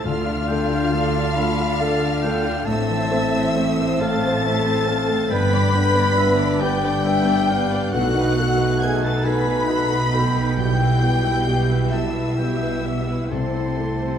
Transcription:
Already playing: A3 A4 A5
0.05 D2 D3 A3 D4 F4 A4 F5 F6
0.28 A3 D4 F4
0.48 A3 D4 F4 A4 G5
0.71 D4 F4 A4
0.93 A3 D4 F4 A4 A5
1.15 D4 F4 D5
1.36 A3 D4 F4 A4 A5 B5
1.59 D4 F4 D5
1.79 A3 D4 F4 A4 A5
2.02 D4 F4 D5
2.22 A3 D4 F4 A4 G5
2.46 D4 F4
2.65 A1 A2 A3 C4 E4 A4 E5 A5 E6
2.89 E3 C4 C5
3.11 A3 C4 A4 C5
3.34 C4 C5
3.56 A3 C4 A4 C5
3.80 C4 A4 C5
4.00 A3 C4 A4 C5 F5 A5 A6
4.24 C4 C5 C6
4.45 A3 C4 A4 C5 E5
4.67 C4 C5
4.88 A3 C4 A4 C5 F5
5.10 C4 C5
5.30 G1 G2 B3 D4 B4 G5 B5 B6
5.53 D3 D4 D5
5.73 B3 D4 B4 G5
5.96 D4 D5
6.17 B3 D4 B4 E5
6.39 D4 D5
6.60 G3 B3 D4 G4 B4 D5 G5 G6
6.83 D4 D5 B5
7.04 B3 D4 B4 D5 E5
7.27 D4 B4 D5
7.49 B3 D4 B4 F5
7.71 B3 D4 D5
7.92 B1 B2 A3 D#4 F#4 A4 F#5 F#6
8.15 F#3 D#4 B4
8.37 B3 D#4 F#4 A4
8.59 D#4 B4
8.81 B3 D#4 F#4 G#4 A4 G#5 G#6
9.02 D#4 A4 B4 A5 A6
9.23 B3 D#4 F#4 A4 B4 D#5 G#5 B5 B6
9.47 D#4 B4 A5
9.68 B3 D#4 F#4 A4 D#5 F#5
9.91 D#4 B4
10.13 B3 D#4 F#4 A4 G5
10.35 D#4 B4
10.56 B1 B2 G3 B3 E4 G4 G5 G6
10.79 G3 E4 B4
11.02 B3 E4 G4
11.24 E4 B4
11.47 B3 E4 G4
11.69 E4 B4
11.90 B3 E4 G4 E5 A5 E6
12.14 E4 B4 G5
12.38 B3 E4 G4 E5 G5
12.61 E4 B4
12.84 B3 E4 G4 E5
13.07 E4 B4
13.29 C2 C3 A3 C4 A4 C5 A5 C6
13.54 C4 E4 C5
13.77 A3 C4 E4 A4
14.01 E4 C5

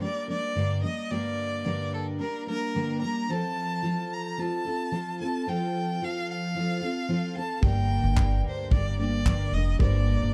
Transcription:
0.01 G3 A#3 D4 A#4 D5
0.27 G3 A#3 D4 A#4 D5
0.55 G2 D3 G3 A#3 D4 A#4
0.82 G3 A#3 D4 A#4 D#5
1.10 G2 D3 G3 A#3 D4 A#4 D5
1.64 G2 D3 G3 A#3 D4 A#4
1.94 A4
2.19 G3 A#3 D4 A#4
2.47 G3 A#3 D4 A#4
2.74 G2 D3 G3 A#3 D4 A#4
3.02 G3 A#3 D4 A#4 A#5
3.29 F3 C4 F4 A4 A5
3.82 F3 C4 F4 A4
4.14 A#5
4.37 F3 C4 F4 A4 A5
4.65 C4 F4 A4
4.91 F3 C4 F4 A4
5.20 C4 F4 A4 A5
5.47 F3 C4 F4 A4 G5
6.01 F3 C4 F4 A4 F5
6.31 F5
6.54 F3 C4 F4 A4
6.80 C4 F4 A4
7.08 F3 C4 F4 A4
7.36 C4 F4 A4 A5
7.61 G1 G2 D3 G3 A#3 D4 G4 A#4 G5, kick
7.66 D5
8.04 G1
8.17 G2 D3 G3 A#3 D4 A#4, kick, clap
8.43 D2
8.48 C5
8.71 G1 G3 A#3 D4 A#4 D5, kick
8.98 G3 A#3 D4 A#4 D5
9.25 G2 D3 G3 A#3 D4 A#4, kick, clap
9.52 F1 A#3 D4 A#4 D#5
9.57 G3
9.79 G1 G2 D3 G3 A#3 D4 G4 A#4 C5 D5, kick
10.22 G1

